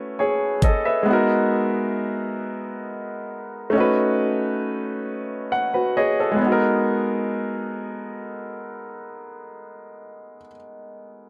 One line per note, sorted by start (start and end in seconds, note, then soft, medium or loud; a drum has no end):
0.00 1.00 A3 medium
0.00 1.01 C#4 medium
0.00 1.02 E4 medium
0.00 1.04 F#4 medium
0.00 0.17 B4 medium
0.19 0.61 G#4 soft
0.19 0.60 C#5 medium
0.62 0.84 A4 medium
0.62 0.84 D#5 medium
0.62 kick medium
0.62 closed hi-hat medium
0.85 1.27 B4 soft
0.85 1.27 E5 soft
1.03 3.67 G#3 medium
1.03 3.68 B3 medium
1.08 3.70 D#4 medium
1.08 3.71 F#4 medium
1.13 3.72 A#4 medium
3.70 6.34 A3 medium
3.70 6.35 C#4 medium
3.75 6.37 D#4 medium
3.75 5.49 F#4 medium
3.80 5.51 B4 medium
5.52 5.93 F#5 medium
5.74 5.95 F#4 soft
5.74 5.95 B4 medium
5.97 6.17 G#4 soft
5.97 6.17 C#5 medium
5.97 6.18 D#5 medium
6.20 6.61 A4 soft
6.20 6.61 D#5 soft
6.32 10.36 G#3 medium
6.36 10.41 B3 medium
6.42 10.46 D#4 medium
6.47 10.51 F#4 medium
6.52 10.57 A#4 medium